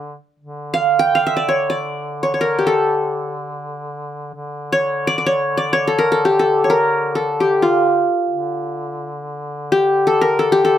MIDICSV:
0, 0, Header, 1, 3, 480
1, 0, Start_track
1, 0, Tempo, 500000
1, 10351, End_track
2, 0, Start_track
2, 0, Title_t, "Qanun"
2, 0, Program_c, 0, 107
2, 707, Note_on_c, 0, 77, 83
2, 953, Note_on_c, 0, 79, 83
2, 1100, Note_off_c, 0, 77, 0
2, 1104, Note_on_c, 0, 77, 76
2, 1215, Note_on_c, 0, 76, 76
2, 1272, Note_off_c, 0, 77, 0
2, 1311, Note_on_c, 0, 74, 73
2, 1426, Note_on_c, 0, 73, 69
2, 1484, Note_off_c, 0, 74, 0
2, 1630, Note_on_c, 0, 74, 75
2, 1687, Note_off_c, 0, 73, 0
2, 1748, Note_off_c, 0, 79, 0
2, 2097, Note_off_c, 0, 76, 0
2, 2140, Note_on_c, 0, 73, 64
2, 2198, Note_off_c, 0, 74, 0
2, 2241, Note_off_c, 0, 73, 0
2, 2245, Note_on_c, 0, 73, 47
2, 2312, Note_on_c, 0, 70, 70
2, 2482, Note_on_c, 0, 67, 50
2, 2560, Note_on_c, 0, 69, 65
2, 2617, Note_off_c, 0, 70, 0
2, 3224, Note_off_c, 0, 73, 0
2, 3687, Note_off_c, 0, 67, 0
2, 3718, Note_off_c, 0, 69, 0
2, 4536, Note_on_c, 0, 73, 81
2, 4870, Note_on_c, 0, 74, 86
2, 4928, Note_off_c, 0, 73, 0
2, 4968, Note_off_c, 0, 74, 0
2, 4972, Note_on_c, 0, 74, 58
2, 5054, Note_on_c, 0, 73, 81
2, 5111, Note_off_c, 0, 74, 0
2, 5351, Note_on_c, 0, 74, 80
2, 5409, Note_off_c, 0, 73, 0
2, 5500, Note_on_c, 0, 73, 84
2, 5557, Note_off_c, 0, 74, 0
2, 5640, Note_on_c, 0, 69, 72
2, 5746, Note_on_c, 0, 70, 82
2, 5803, Note_off_c, 0, 69, 0
2, 5873, Note_on_c, 0, 69, 78
2, 5931, Note_off_c, 0, 70, 0
2, 6000, Note_on_c, 0, 67, 67
2, 6134, Note_off_c, 0, 69, 0
2, 6138, Note_on_c, 0, 69, 72
2, 6372, Note_off_c, 0, 73, 0
2, 6376, Note_on_c, 0, 73, 57
2, 6430, Note_on_c, 0, 70, 80
2, 6487, Note_off_c, 0, 69, 0
2, 6867, Note_on_c, 0, 69, 65
2, 6924, Note_off_c, 0, 70, 0
2, 7104, Note_off_c, 0, 67, 0
2, 7108, Note_on_c, 0, 67, 65
2, 7318, Note_on_c, 0, 65, 59
2, 7355, Note_off_c, 0, 73, 0
2, 7991, Note_off_c, 0, 69, 0
2, 8313, Note_off_c, 0, 67, 0
2, 8710, Note_off_c, 0, 65, 0
2, 9330, Note_on_c, 0, 67, 78
2, 9666, Note_on_c, 0, 69, 77
2, 9806, Note_on_c, 0, 70, 77
2, 9863, Note_off_c, 0, 69, 0
2, 9975, Note_on_c, 0, 69, 73
2, 10033, Note_off_c, 0, 70, 0
2, 10096, Note_off_c, 0, 67, 0
2, 10100, Note_on_c, 0, 67, 83
2, 10216, Note_off_c, 0, 69, 0
2, 10220, Note_on_c, 0, 69, 88
2, 10344, Note_off_c, 0, 67, 0
2, 10351, Note_off_c, 0, 69, 0
2, 10351, End_track
3, 0, Start_track
3, 0, Title_t, "Duduk"
3, 0, Program_c, 1, 69
3, 0, Note_on_c, 1, 50, 63
3, 217, Note_off_c, 1, 50, 0
3, 380, Note_on_c, 1, 50, 62
3, 4160, Note_off_c, 1, 50, 0
3, 4166, Note_on_c, 1, 50, 63
3, 7798, Note_off_c, 1, 50, 0
3, 7961, Note_on_c, 1, 50, 60
3, 10351, Note_off_c, 1, 50, 0
3, 10351, End_track
0, 0, End_of_file